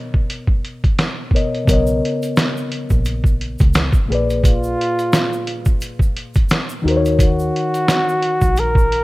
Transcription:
Already playing: reed electric piano B2 B3 A#4 C#5 D#5
0.14 kick
0.30 closed hi-hat
0.47 kick
0.65 closed hi-hat
0.84 kick, closed hi-hat
0.99 finger snap, snare, closed hi-hat
1.31 reed electric piano B2 B3 A#4, kick
1.35 reed electric piano C#5 D#5, closed hi-hat
1.55 closed hi-hat
1.65 fingered electric bass B1, reed electric piano C#3 B3 A#4, kick, closed hi-hat, shaker
1.71 reed electric piano C#5 D#5
1.87 shaker
2.05 closed hi-hat
2.22 closed hi-hat, shaker
2.36 finger snap, snare, closed hi-hat, shaker
2.57 shaker
2.72 closed hi-hat
2.90 fingered electric bass A#1, kick, shaker
3.05 closed hi-hat, shaker
3.24 kick, shaker
3.41 closed hi-hat
3.59 fingered electric bass C#2, kick, closed hi-hat, shaker
3.74 finger snap, snare, closed hi-hat, shaker
3.92 kick, shaker
4.06 reed electric piano A#2 A#3
4.10 fingered electric bass A#1, reed electric piano G#4 B4, closed hi-hat
4.15 reed electric piano D5
4.30 closed hi-hat, shaker
4.44 flugelhorn F4, kick, closed hi-hat, shaker
4.63 shaker
4.81 closed hi-hat
4.99 closed hi-hat, shaker
5.13 finger snap, snare, closed hi-hat, shaker
5.33 shaker
5.47 closed hi-hat
5.65 kick, shaker
5.81 closed hi-hat, shaker
5.99 kick, shaker
6.16 closed hi-hat
6.34 kick, closed hi-hat, shaker
6.49 finger snap, snare, closed hi-hat, shaker
6.69 shaker
6.82 fingered electric bass D#2, reed electric piano D#3 D#4 F#4
6.88 reed electric piano A#4 C5, closed hi-hat
6.96 reed electric piano C#5
7.05 closed hi-hat, shaker
7.19 flugelhorn F#4, kick, closed hi-hat, shaker
7.39 shaker
7.56 closed hi-hat
7.74 closed hi-hat, shaker
7.88 finger snap, snare, closed hi-hat, shaker
8.09 shaker
8.22 closed hi-hat
8.41 fingered electric bass A#1, kick, shaker
8.56 flugelhorn A#4, closed hi-hat, shaker
8.75 kick, shaker
8.92 closed hi-hat

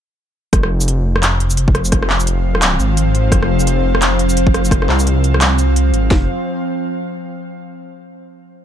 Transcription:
0.53 detuned saw bass F1, synth drone F3 C4 C5 F5, kick, cross-stick, closed hi-hat
0.63 cross-stick
0.81 shaker
0.88 closed hi-hat
1.05 detuned saw bass F1
1.16 cross-stick
1.23 clap, closed hi-hat
1.40 closed hi-hat
1.50 shaker
1.57 closed hi-hat
1.68 kick
1.75 cross-stick, closed hi-hat
1.85 shaker
1.92 kick, cross-stick, closed hi-hat
2.03 cross-stick
2.10 detuned saw bass F1, clap
2.20 shaker
2.27 closed hi-hat
2.55 cross-stick
2.62 clap, closed hi-hat
2.80 detuned saw bass G#1, shaker
2.97 closed hi-hat
3.15 closed hi-hat
3.32 detuned saw bass F1, kick, cross-stick, closed hi-hat
3.43 cross-stick
3.60 shaker
3.67 closed hi-hat
3.84 detuned saw bass F1
3.95 cross-stick
4.02 clap, closed hi-hat
4.19 closed hi-hat
4.30 shaker
4.37 closed hi-hat
4.47 kick
4.54 cross-stick, closed hi-hat
4.65 shaker
4.71 kick, cross-stick, closed hi-hat
4.82 cross-stick
4.89 detuned saw bass C2, clap
5.00 shaker
5.07 closed hi-hat
5.24 closed hi-hat
5.34 cross-stick
5.41 clap, closed hi-hat
5.59 closed hi-hat, shaker
5.76 closed hi-hat
5.93 detuned saw bass G#1, closed hi-hat
6.11 detuned saw bass F1, kick, snare

